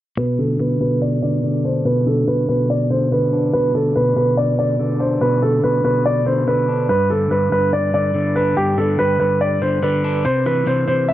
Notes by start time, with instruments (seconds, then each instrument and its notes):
0.17 clean electric guitar B2, grand piano B4
0.39 clean electric guitar D3, grand piano A4
0.60 clean electric guitar B2, grand piano B4
0.81 clean electric guitar B2, grand piano B4
1.02 grand piano D5
1.22 clean electric guitar D3, grand piano D5
1.44 clean electric guitar D3
1.65 clean electric guitar D4, grand piano C5
1.85 clean electric guitar B2, grand piano B4
2.07 clean electric guitar D3, grand piano A4
2.28 clean electric guitar B2, grand piano B4
2.49 clean electric guitar B2, grand piano B4
2.70 grand piano D5
2.90 clean electric guitar D3, grand piano C5
3.12 clean electric guitar D3, grand piano B4
3.33 clean electric guitar D4
3.53 clean electric guitar B2, grand piano B4
3.75 clean electric guitar D3, grand piano A4
3.96 clean electric guitar B2, grand piano B4
4.16 clean electric guitar B2, grand piano B4
4.37 grand piano D5
4.59 clean electric guitar D3, grand piano D5
4.79 clean electric guitar D3
4.99 clean electric guitar D4, grand piano C5
5.21 clean electric guitar B2, grand piano B4
5.42 clean electric guitar D3, grand piano A4
5.64 clean electric guitar B2, grand piano B4
5.84 clean electric guitar B2, grand piano B4
6.06 grand piano D5
6.26 clean electric guitar D3, grand piano C5
6.47 clean electric guitar D3, grand piano B4
6.69 clean electric guitar D4
6.89 clean electric guitar G2, grand piano B4
7.10 clean electric guitar D3, grand piano A4
7.31 clean electric guitar G2, grand piano B4
7.52 clean electric guitar G2, grand piano B4
7.73 grand piano D5
7.94 clean electric guitar D3, grand piano D5
8.15 clean electric guitar D3
8.36 clean electric guitar D4, grand piano B4
8.57 clean electric guitar G2, grand piano G4
8.78 clean electric guitar D3, grand piano A4
8.99 clean electric guitar G2, grand piano B4
9.20 clean electric guitar G2, grand piano B4
9.41 grand piano D5
9.62 clean electric guitar D3, grand piano C5
9.83 clean electric guitar D3, grand piano B4
10.04 clean electric guitar D4
10.25 clean electric guitar C3, grand piano C5
10.46 clean electric guitar E3, grand piano B4
10.67 clean electric guitar C3, grand piano C5
10.87 clean electric guitar C3, grand piano C5
11.09 grand piano E5